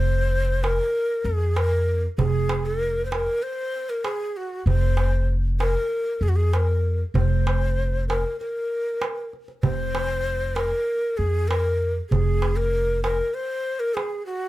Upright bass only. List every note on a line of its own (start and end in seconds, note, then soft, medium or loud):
0.00 0.78 F1 medium
1.24 2.06 F2 medium
2.18 3.26 F1 medium
4.66 5.74 F1 medium
6.21 7.02 F2 medium
7.14 8.22 F1 medium
9.63 10.71 F1 medium
11.19 11.99 F2 medium
12.11 13.19 F1 medium